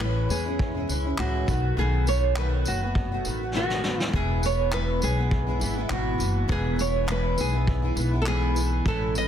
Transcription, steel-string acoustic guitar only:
0.00 A2 E3 G#3 C#4 E4
0.29 E3 G#3 C#4 E4
0.45 G#3 C#4 E4
0.74 G#3 C#4 E4
0.88 E3 G#3 C#4 E4
1.04 G#3 C#4 E4
1.17 A2 E3 G#3 C#4 E4
1.46 D#3 A3 B3
1.50 F#4
1.77 B2 D#3 A3 B3 F#4
2.06 D#3 A3 B3 F#4
2.36 B2 D#3 A3 B3 F#4
2.65 D#3 A3 B3 F#4
2.82 A3 B3 F#4
3.12 A3 B3 F#4
3.25 D#3 A3 B3 F#4
3.41 A3 B3 F#4
3.55 B2 D#3 A3 B3 F#4
3.84 D#3 A3 B3 F#4
4.13 E2 B2 E3 G#3 B3 E4
4.42 E3 G#3 B3 E4
4.72 E2 B2 E3 G#3 B3 E4
5.01 E3 G#3 B3 E4
5.17 E3 G#3 B3 E4
5.47 E3 G#3 B3 E4
5.60 E3 G#3 B3 E4
5.76 E3 G#3 B3 E4
5.89 E2 B2 E3 G#3 B3 E4
6.18 E3 G#3 B3 E4
6.48 E2 B2 E3 G#3 B3 E4
6.76 E3 G#3 B3 E4
7.07 E2 B2 E3 G#3 B3 E4
7.36 E3 G#3 B3 E4
7.52 E3 G#3 B3 E4
7.82 E3 G#3 B3 E4
7.95 E3 G#3 B3 E4
8.11 E3 G#3 B3 E4
8.26 E2 B2 E3 G#3 B3 E4
8.55 E3 G#3 B3 E4
8.86 A2 E3 G#3 C#4 E4
9.15 E3 G#3 C#4 E4

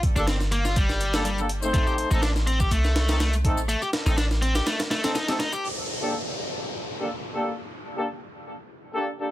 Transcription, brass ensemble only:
0.16 A#3 D4 G4 A4
1.14 A#3 D4 G4 A4
1.38 A#3 D4 G4 A4
1.62 A3 C4 D#4 C5
2.11 A3 C4 D#4 A4
3.09 A3 C4 D#4 A4
3.45 A3 C4 D#4 A4
4.06 A3 C4 D#4 A4
5.04 A3 C4 D#4 A4
5.28 A3 C4 D#4 A4
6.01 A#3 D4 G4 A4
6.99 A#3 D4 G4 A4
7.35 A#3 D4 G4 A4
7.97 A#3 D4 G4 A4
8.94 A#3 D4 G4 A4
9.19 A#3 D4 G4 A4

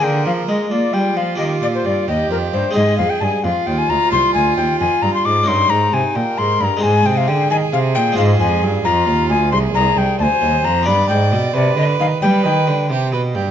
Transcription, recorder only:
0.04 G5
0.26 F5
0.48 D#5
0.71 D5
0.93 G5
1.17 F5
1.39 D#5
1.63 D5
1.75 C5
1.86 D5
2.08 D#5
2.31 A#4
2.53 C5
2.75 D#5
2.98 F5
3.10 G5
3.20 G#5 A5
3.44 F5
3.67 G5
3.78 G#5
3.90 A#5
4.12 C6
4.34 G#5
4.57 G5
4.80 G#5
5.02 A#5
5.14 C6
5.25 D6
5.48 C6
5.70 A#5
5.94 G#5
6.16 G5
6.38 C6
6.61 A#5 B5
6.83 G#5
7.06 G5
7.17 F5
7.28 G5
7.51 G#5
7.73 F5
7.95 G5
8.18 F5
8.40 G#5
8.85 A#5
9.30 G#5
9.52 C6
9.75 A#5
9.98 G5
10.20 G#5 A5
10.65 A#5
10.87 B5
11.09 G5
11.55 D5
11.78 D#5
12.00 F5
12.22 G5
12.45 G5

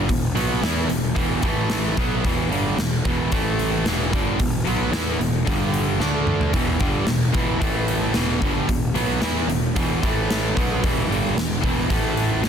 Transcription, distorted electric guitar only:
0.08 E2 B2
0.35 B2 F#3 B3
0.61 E3 B3 E4
0.88 E2 B2
1.15 E2 B2 E3
1.43 A2 E3 A3
1.97 B2 F#3 B3
2.24 E2 B2 E3
2.51 G2 D3 G3
2.79 E2 B2
3.05 E2 B2 E3
3.31 A2 E3 A3
3.84 E2 B2 E3
4.12 G2 D3 G3
4.38 E2 B2
4.64 B2 F#3 B3
4.91 E3 B3 E4
5.18 E2 B2
5.45 G2 D3 G3
5.99 D3 A3 D4
6.53 E2 B2 E3
6.78 G2 D3 G3
7.05 E2 B2
7.32 E2 B2 E3
7.59 A2 E3 A3
8.13 E2 B2 E3
8.40 G2 D3 G3
8.69 E2 B2
8.94 B2 F#3 B3
9.21 E3 B3 E4
9.49 E2 B2
9.76 E2 B2 E3
10.02 A2 E3 A3
10.55 B2 F#3 B3
10.80 E2 B2 E3
11.07 G2 D3 G3
11.35 E2 B2
11.61 E2 B2 E3
11.88 A2 E3 A3
12.43 E2 B2 E3

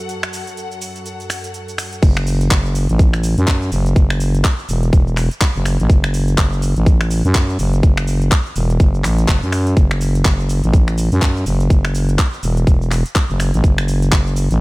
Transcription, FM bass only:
2.03 F#1
2.51 F#1
2.89 A1
3.38 F#2
3.72 F#1
4.69 E1
4.93 E1
5.55 F#1
5.80 A1
6.76 A1
7.25 F#2
7.59 F#1
8.56 E1
9.04 A1
9.43 F#2
9.77 F#1
10.64 A1
11.12 F#2
11.46 F#1
11.70 F#1
12.43 E1
13.30 F#1
13.54 A1
14.12 F#1
14.51 A1

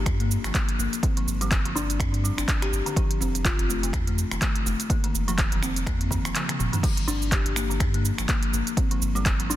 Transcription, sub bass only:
0.06 G2
0.44 G1
0.79 G1
1.27 G1
1.65 G1
2.00 G2
2.38 G1
2.72 G1
3.21 F1
3.59 F1
3.93 F2
4.31 F1
4.66 F1
5.14 F1
5.52 F1
5.87 F2
6.25 F1
6.59 F1
7.08 G1
7.46 G1
7.80 G2
8.19 G1
8.53 G1
9.02 G1
9.40 G1

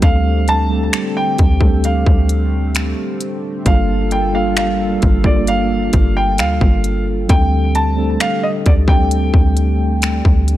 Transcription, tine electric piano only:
0.01 G3 A3 C4 D4 A4
0.69 G3 A3 C4 D4 A4
1.60 G3 A3 C4 D4 A4
3.65 G3 A#3 D4 F4 A4
4.33 G3 A#3 D4 F4 A4
5.24 G3 A#3 D4 F4 A4
7.28 G3 A3 C4 D4 A4
7.96 G3 A3 C4 D4 A4
8.87 G3 A3 C4 D4 A4

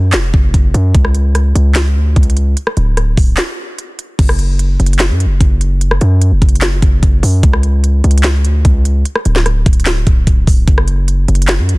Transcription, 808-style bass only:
Already playing: F#2
0.13 F1
0.34 F#1
0.54 F#1
0.74 F#2
0.95 C#2
1.55 C#2
1.96 D2
2.16 C#2
2.77 D1
3.17 D1
4.19 F#1
4.80 F#1
5.10 F#2
5.25 F#1
5.41 F#1
6.01 F#2
6.32 F1
6.42 F#1
6.82 F#1
7.03 F#1
7.23 F#2
7.43 C#2
8.04 C#2
8.45 D2
8.65 C#2
9.26 D1
9.66 D1
10.07 D1
10.27 D1
10.47 D1
10.68 F#1
11.28 F#1
11.59 F#2
11.74 F#1

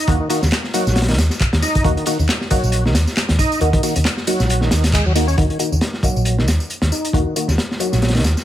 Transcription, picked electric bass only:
0.08 D#2
0.43 D#2
0.87 A#1
1.18 D#2
1.53 D#2
1.84 D#2
2.19 D#2
2.63 A#1
2.95 D#2
3.29 D#2
3.61 D#2
3.96 D#2
4.40 A#1
4.72 D#2
5.06 D#2
5.38 D#2
5.72 D#2
6.16 A#1
6.48 D#2
6.82 D#2
7.13 D#2
7.48 D#2
7.93 A#1
8.24 D#2

